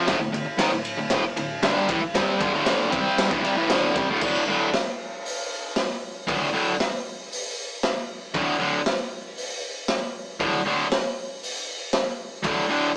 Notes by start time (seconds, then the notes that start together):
0.07 D2 A2, kick, snare, ride
0.20 D2 A2
0.33 D2 A2, ride
0.46 muted overdriven electric guitar stroke
0.58 G#2 D#3, snare, ride
0.72 D2 A2
0.85 ride
0.97 D2 A2
1.10 D2 A2, kick, snare, ride
1.24 muted overdriven electric guitar stroke
1.37 D2 A2, ride
1.62 G2 D3 G3, snare, ride
1.88 A2 E3, kick, ride
2.02 muted overdriven electric guitar stroke
2.14 C3 G3 C4, kick, snare, ride
2.39 G2 D3, kick, ride
2.53 D2 A2 D3
2.66 snare, ride
2.90 C3 G3 C4, kick, ride
3.18 snare, ride
3.30 D2 A2, kick
3.42 C3 G3, ride
3.56 A2 E3
3.69 D2 A2 D3, snare, ride
3.96 C3 G3, kick, ride
4.10 D2 A2
4.21 D2 A2 D3, kick, crash
4.48 D2 A2 D3
4.74 snare, open hi-hat
5.26 open hi-hat
5.76 snare, open hi-hat
6.27 D2 A2 D3, kick, open hi-hat
6.53 D2 A2 D3
6.80 snare, open hi-hat
7.32 open hi-hat
7.83 snare, open hi-hat
8.34 D2 A2 D3, kick, open hi-hat
8.59 D2 A2 D3
8.86 snare, open hi-hat
9.37 open hi-hat
9.88 snare, open hi-hat
10.40 D2 A2 D3, kick, open hi-hat
10.65 D2 A2 D3
10.92 snare, open hi-hat
11.43 open hi-hat
11.93 snare, open hi-hat
12.43 D2 A2 D3, kick, open hi-hat
12.69 D2 A2 D3